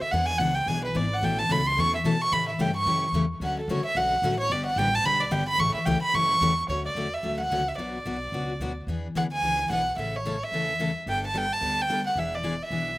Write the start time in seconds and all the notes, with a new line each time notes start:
0.01 E5, muted upright bass stroke
0.11 E2 E3 B3 D4 G#4 F#5
0.26 G#5
0.38 C#2 E3 B3 D4 G#4 F#5
0.55 G5
0.66 B1 E3 B3 D4 G#4 G#5
0.85 B4
0.95 G#1 E3 B3 D4 G#4 D5
1.14 F#5
1.22 A1 B2 E3 A3 C#4 A4 G5
1.39 A5
1.49 C#2 B2 E3 A3 C#4 A4 B5
1.67 C6
1.77 E2 B2 E3 A3 C#4 A4 C#6
1.96 E5
2.04 B2 E3 A3 C#4 A4 A5
2.21 C#6
2.32 A2 C#3 E3 A3 C#4 G4 B5
2.49 E5
2.59 G2 C#3 E3 A3 C#4 G4 G5
2.77 C#6
2.86 F#2 C#3 E3 A3 C#4 G4
3.12 E2 C#3 E3 A3 C#4 G4
3.40 D2 D3 F#3 A3 C#4 F#4
3.44 F#5
3.60 A4
3.68 C#2 D3 F#3 A3 C#4 F#4 C#5
3.83 E5, muted upright bass stroke
3.95 B1 D3 F#3 A3 C#4 F#4 F#5
4.22 A1 D3 F#3 A3 C#4 F#4
4.40 C#5
4.50 G1 D3 G3 B3 D4 G4 D5
4.66 F#5
4.76 A1 D3 G3 B3 D4 G4 G5
4.95 A5
5.04 B1 D3 G3 B3 D4 G4 B5
5.21 D5
5.31 G1 D3 G3 B3 D4 G4 G5
5.49 B5
5.58 A1 C#3 E3 A3 C#4 G4 C#6
5.75 E5, muted upright bass stroke
5.86 C#2 C#3 E3 A3 C#4 G4 G5
6.02 B5, muted upright bass stroke
6.14 F#2 C#3 E3 A3 C#4 G4 C#6
6.41 E2 C#3 E3 A3 C#4 G4
6.68 D2 D3 F#3 A3 C#4 F#4 C#5
6.86 D5
6.95 E2 D3 F#3 A3 C#4 F#4
7.14 E5
7.23 D2 D3 F#3 A3 C#4 F#4
7.41 F#5
7.50 C#2 D3 F#3 A3 C#4 F#4
7.68 E5
7.78 B1 B2 F#3 B3 D4 F#4 D5
8.05 B1 B2 F#3 B3 D4 F#4
8.32 C#2 B2 F#3 B3 D4 F#4
8.59 D2 B2 F#3 B3 D4 F#4
8.87 E2 E3 B3 D4 G#4
9.15 D2 E3 B3 D4 G#4 F#5
9.33 G#5
9.42 C#2 E3 B3 D4 G#4
9.70 B1 E3 B3 D4 G#4 F#5
9.97 A1 C#3 E3 A3 C#4 A4 E5
10.16 C#5
10.25 C#3 E3 A3 C#4 A4
10.44 E5
10.52 E2 C#3 E3 A3 C#4 A4
10.80 C#3 E3 A3 C#4 A4
11.06 G1 G3 B3 D4 A4 G5
11.27 A5
11.34 G3 B3 D4 A4 G5
11.53 A5
11.61 D2 G3 B3 D4 A4
11.82 G5
11.89 G3 B3 D4 A4
12.07 F#5
12.15 E1 E3 B3 D4 G#4 E5
12.35 D5
12.43 E3 B3 D4 G#4
12.53 D5
12.63 E5
12.70 B1 E3 B3 D4 G#4